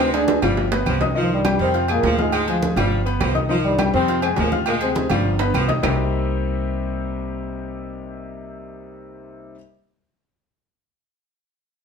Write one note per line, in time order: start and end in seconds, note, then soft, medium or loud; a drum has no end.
0.00 0.37 D2 loud
0.00 0.12 C3 medium
0.00 0.22 G#3 loud
0.00 0.11 C4 loud
0.13 0.42 D3 medium
0.13 0.38 G#3 medium
0.13 0.41 D4 loud
0.13 0.38 G#4 medium
0.13 0.38 G#5 medium
0.13 high conga soft
0.13 high timbale medium
0.13 low agogo medium
0.28 high conga loud
0.28 high timbale medium
0.28 low agogo medium
0.42 0.83 G1 medium
0.42 0.67 F3 medium
0.42 0.66 G3 medium
0.42 0.67 F4 medium
0.42 0.67 F5 medium
0.42 low conga medium
0.42 low timbale medium
0.42 low agogo loud
0.42 claves medium
0.57 high conga soft
0.57 low timbale medium
0.72 0.96 B3 medium
0.72 0.96 B4 medium
0.72 0.96 B5 medium
0.72 high conga soft
0.72 low timbale loud
0.72 low agogo medium
0.86 1.54 C2 medium
0.86 1.02 F3 medium
0.86 high conga medium
0.86 low agogo loud
0.86 claves medium
1.01 1.13 D#4 medium
1.01 1.13 D#5 medium
1.01 1.14 D#6 medium
1.01 high conga medium
1.01 low timbale loud
1.15 1.39 D#3 medium
1.15 1.39 F3 medium
1.15 1.31 F3 medium
1.15 1.40 D#4 medium
1.15 1.30 F4 medium
1.15 1.40 D#5 medium
1.15 high conga soft
1.31 1.59 G2 medium
1.31 1.59 G3 loud
1.31 high conga soft
1.45 1.69 G3 medium
1.45 1.69 G4 medium
1.45 1.69 G5 medium
1.45 high conga loud
1.45 low timbale medium
1.45 low agogo loud
1.45 claves medium
1.59 2.00 F2 loud
1.59 1.88 C3 loud
1.59 1.83 D#3 medium
1.59 1.88 C4 loud
1.74 1.86 F4 medium
1.74 1.87 F5 medium
1.74 1.87 F6 medium
1.74 high conga soft
1.74 low agogo medium
1.88 2.18 A#2 medium
1.88 2.13 G#3 medium
1.88 2.18 A#3 loud
1.88 2.13 G#4 medium
1.88 2.13 G#5 medium
1.88 high conga soft
1.88 low agogo loud
1.88 claves medium
2.03 2.71 D2 medium
2.03 2.20 F3 medium
2.03 high conga medium
2.03 low timbale medium
2.03 low agogo medium
2.18 2.47 G#2 medium
2.18 2.46 G#3 loud
2.18 2.42 F4 medium
2.18 2.43 F5 medium
2.18 2.43 F6 medium
2.18 high conga medium
2.32 2.56 G#3 loud
2.32 high conga soft
2.32 low agogo loud
2.32 claves medium
2.47 2.75 F3 medium
2.47 2.71 G#3 medium
2.47 2.76 F4 medium
2.47 2.72 G#4 medium
2.47 2.72 G#5 medium
2.47 high conga soft
2.47 low agogo medium
2.62 high conga loud
2.62 low timbale medium
2.62 low agogo medium
2.76 3.17 G1 loud
2.76 3.00 F3 medium
2.76 3.00 G3 medium
2.76 3.01 F4 medium
2.76 3.01 F5 medium
2.76 low conga medium
2.76 low agogo loud
2.76 claves medium
2.92 high conga soft
3.05 3.30 B3 medium
3.05 3.30 B4 medium
3.05 3.30 B5 medium
3.05 high conga soft
3.05 low agogo medium
3.20 3.88 C2 loud
3.20 3.36 F3 medium
3.20 high conga medium
3.20 low timbale loud
3.20 low agogo loud
3.20 claves medium
3.35 3.47 D#4 medium
3.35 3.47 D#5 medium
3.35 3.47 D#6 medium
3.35 high conga medium
3.49 3.73 D#3 medium
3.49 3.73 F3 medium
3.49 3.57 F3 loud
3.49 3.73 D#4 medium
3.49 3.58 F4 medium
3.49 3.74 D#5 medium
3.49 high conga soft
3.64 3.92 G2 medium
3.64 3.92 G3 loud
3.64 high conga soft
3.78 4.03 G3 medium
3.78 4.03 G4 medium
3.78 4.03 G5 medium
3.78 high conga loud
3.78 low timbale medium
3.78 low agogo loud
3.78 claves medium
3.94 4.35 F2 loud
3.94 4.22 C3 medium
3.94 4.17 D#3 medium
3.94 4.21 C4 loud
4.08 4.20 F4 medium
4.08 4.21 F5 medium
4.08 4.21 F6 medium
4.08 high conga soft
4.08 low agogo medium
4.22 4.31 C3 medium
4.22 4.47 G#3 medium
4.22 4.29 C4 loud
4.22 4.47 G#4 medium
4.22 4.47 G#5 medium
4.22 high conga soft
4.22 low agogo loud
4.22 claves medium
4.37 5.05 D2 loud
4.37 4.52 A#2 medium
4.37 4.53 F3 medium
4.37 4.51 A#3 loud
4.37 high conga medium
4.37 low timbale medium
4.37 low agogo loud
4.52 4.60 G#2 medium
4.52 4.59 G#3 medium
4.52 4.76 F4 medium
4.52 4.76 F5 medium
4.52 4.77 F6 medium
4.52 high conga medium
4.66 4.75 A#2 medium
4.66 4.90 G#3 medium
4.66 4.74 A#3 loud
4.66 high conga soft
4.66 low agogo loud
4.66 claves medium
4.81 5.10 C3 medium
4.81 5.05 G#3 medium
4.81 5.09 C4 loud
4.81 5.06 G#4 medium
4.81 5.06 G#5 medium
4.81 high conga soft
4.81 low agogo medium
4.95 high conga loud
4.95 low timbale medium
4.95 low agogo medium
5.10 5.51 G1 loud
5.10 5.35 F3 medium
5.10 5.34 G3 medium
5.10 5.35 F4 medium
5.10 5.35 F5 medium
5.10 low conga medium
5.10 low agogo loud
5.10 claves medium
5.25 high conga soft
5.39 5.64 B3 medium
5.39 5.64 B4 medium
5.39 5.64 B5 medium
5.39 high conga soft
5.39 high timbale loud
5.39 low agogo medium
5.54 5.80 C2 medium
5.54 5.70 F3 medium
5.54 high conga medium
5.54 low agogo loud
5.54 claves medium
5.68 5.81 D#4 medium
5.68 5.81 D#5 medium
5.68 5.81 D#6 medium
5.68 high conga medium
5.68 low timbale medium
5.83 9.55 C2 medium
5.83 9.54 C3 medium
5.83 5.94 C3 medium
5.83 9.55 G3 medium
5.83 9.55 A#3 medium
5.83 9.55 C4 medium
5.83 9.55 D#4 medium
5.83 9.55 G4 loud
5.83 low conga loud
5.83 low timbale loud
5.83 claves loud